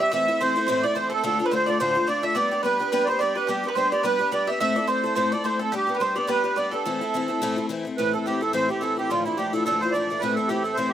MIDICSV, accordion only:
0, 0, Header, 1, 2, 480
1, 0, Start_track
1, 0, Key_signature, 0, "minor"
1, 0, Tempo, 280636
1, 197, Time_signature, 4, 2, 24, 8
1, 18695, End_track
2, 0, Start_track
2, 0, Title_t, "Accordion"
2, 0, Program_c, 0, 21
2, 17, Note_on_c, 0, 76, 94
2, 217, Note_off_c, 0, 76, 0
2, 242, Note_on_c, 0, 76, 97
2, 708, Note_on_c, 0, 72, 100
2, 714, Note_off_c, 0, 76, 0
2, 1185, Note_off_c, 0, 72, 0
2, 1211, Note_on_c, 0, 72, 106
2, 1455, Note_on_c, 0, 74, 94
2, 1460, Note_off_c, 0, 72, 0
2, 1655, Note_on_c, 0, 72, 87
2, 1659, Note_off_c, 0, 74, 0
2, 1923, Note_off_c, 0, 72, 0
2, 1926, Note_on_c, 0, 69, 87
2, 2120, Note_off_c, 0, 69, 0
2, 2146, Note_on_c, 0, 69, 98
2, 2480, Note_on_c, 0, 72, 73
2, 2490, Note_off_c, 0, 69, 0
2, 2514, Note_off_c, 0, 72, 0
2, 2528, Note_on_c, 0, 71, 85
2, 2620, Note_off_c, 0, 71, 0
2, 2635, Note_on_c, 0, 72, 89
2, 2887, Note_on_c, 0, 74, 86
2, 2893, Note_off_c, 0, 72, 0
2, 3078, Note_on_c, 0, 72, 89
2, 3096, Note_off_c, 0, 74, 0
2, 3567, Note_on_c, 0, 74, 92
2, 3574, Note_off_c, 0, 72, 0
2, 3823, Note_on_c, 0, 76, 83
2, 3839, Note_off_c, 0, 74, 0
2, 4021, Note_on_c, 0, 74, 90
2, 4044, Note_off_c, 0, 76, 0
2, 4477, Note_off_c, 0, 74, 0
2, 4507, Note_on_c, 0, 71, 87
2, 4984, Note_off_c, 0, 71, 0
2, 5010, Note_on_c, 0, 71, 103
2, 5212, Note_off_c, 0, 71, 0
2, 5212, Note_on_c, 0, 74, 54
2, 5274, Note_off_c, 0, 74, 0
2, 5274, Note_on_c, 0, 72, 91
2, 5484, Note_on_c, 0, 74, 91
2, 5490, Note_off_c, 0, 72, 0
2, 5746, Note_on_c, 0, 71, 86
2, 5759, Note_off_c, 0, 74, 0
2, 5950, Note_on_c, 0, 67, 89
2, 5966, Note_off_c, 0, 71, 0
2, 6303, Note_off_c, 0, 67, 0
2, 6321, Note_on_c, 0, 71, 79
2, 6432, Note_on_c, 0, 72, 81
2, 6438, Note_off_c, 0, 71, 0
2, 6710, Note_on_c, 0, 74, 75
2, 6713, Note_off_c, 0, 72, 0
2, 6928, Note_off_c, 0, 74, 0
2, 6942, Note_on_c, 0, 71, 101
2, 7426, Note_off_c, 0, 71, 0
2, 7426, Note_on_c, 0, 74, 80
2, 7669, Note_on_c, 0, 76, 94
2, 7689, Note_off_c, 0, 74, 0
2, 7854, Note_off_c, 0, 76, 0
2, 7879, Note_on_c, 0, 76, 95
2, 8327, Note_off_c, 0, 76, 0
2, 8360, Note_on_c, 0, 72, 86
2, 8807, Note_off_c, 0, 72, 0
2, 8832, Note_on_c, 0, 72, 90
2, 9112, Note_off_c, 0, 72, 0
2, 9121, Note_on_c, 0, 74, 76
2, 9328, Note_on_c, 0, 72, 82
2, 9333, Note_off_c, 0, 74, 0
2, 9574, Note_off_c, 0, 72, 0
2, 9618, Note_on_c, 0, 69, 73
2, 9821, Note_off_c, 0, 69, 0
2, 9854, Note_on_c, 0, 67, 91
2, 10198, Note_on_c, 0, 71, 90
2, 10211, Note_off_c, 0, 67, 0
2, 10289, Note_on_c, 0, 72, 80
2, 10295, Note_off_c, 0, 71, 0
2, 10560, Note_off_c, 0, 72, 0
2, 10581, Note_on_c, 0, 74, 76
2, 10772, Note_on_c, 0, 71, 82
2, 10782, Note_off_c, 0, 74, 0
2, 11242, Note_on_c, 0, 74, 86
2, 11259, Note_off_c, 0, 71, 0
2, 11516, Note_off_c, 0, 74, 0
2, 11529, Note_on_c, 0, 69, 68
2, 13100, Note_off_c, 0, 69, 0
2, 13635, Note_on_c, 0, 71, 95
2, 13912, Note_off_c, 0, 71, 0
2, 13912, Note_on_c, 0, 69, 83
2, 14119, Note_on_c, 0, 67, 78
2, 14127, Note_off_c, 0, 69, 0
2, 14379, Note_on_c, 0, 69, 81
2, 14393, Note_off_c, 0, 67, 0
2, 14579, Note_off_c, 0, 69, 0
2, 14599, Note_on_c, 0, 72, 97
2, 14873, Note_off_c, 0, 72, 0
2, 14874, Note_on_c, 0, 67, 85
2, 15063, Note_on_c, 0, 69, 85
2, 15088, Note_off_c, 0, 67, 0
2, 15346, Note_off_c, 0, 69, 0
2, 15362, Note_on_c, 0, 67, 82
2, 15552, Note_on_c, 0, 65, 88
2, 15571, Note_off_c, 0, 67, 0
2, 15803, Note_off_c, 0, 65, 0
2, 15811, Note_on_c, 0, 64, 82
2, 16021, Note_on_c, 0, 67, 83
2, 16036, Note_off_c, 0, 64, 0
2, 16304, Note_on_c, 0, 69, 76
2, 16305, Note_off_c, 0, 67, 0
2, 16481, Note_off_c, 0, 69, 0
2, 16507, Note_on_c, 0, 69, 95
2, 16769, Note_on_c, 0, 72, 91
2, 16787, Note_off_c, 0, 69, 0
2, 16959, Note_on_c, 0, 74, 83
2, 16995, Note_off_c, 0, 72, 0
2, 17438, Note_on_c, 0, 71, 98
2, 17472, Note_off_c, 0, 74, 0
2, 17704, Note_on_c, 0, 69, 85
2, 17705, Note_off_c, 0, 71, 0
2, 17919, Note_on_c, 0, 67, 83
2, 17943, Note_off_c, 0, 69, 0
2, 18176, Note_on_c, 0, 69, 72
2, 18185, Note_off_c, 0, 67, 0
2, 18362, Note_on_c, 0, 72, 84
2, 18419, Note_off_c, 0, 69, 0
2, 18622, Note_on_c, 0, 67, 89
2, 18645, Note_off_c, 0, 72, 0
2, 18695, Note_off_c, 0, 67, 0
2, 18695, End_track
0, 0, End_of_file